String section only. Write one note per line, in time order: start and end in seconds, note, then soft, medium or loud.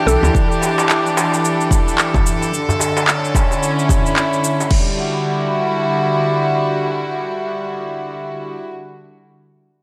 0.00 2.53 E3 medium
0.00 2.53 D4 medium
0.00 0.34 F#4 medium
0.00 2.52 G4 loud
1.34 4.71 A4 medium
2.53 4.69 D3 medium
3.09 4.71 C#4 medium
3.53 4.71 E4 medium
4.70 8.47 D3 medium
4.79 8.56 G3 medium
4.89 8.65 E4 medium
4.95 8.71 F#4 medium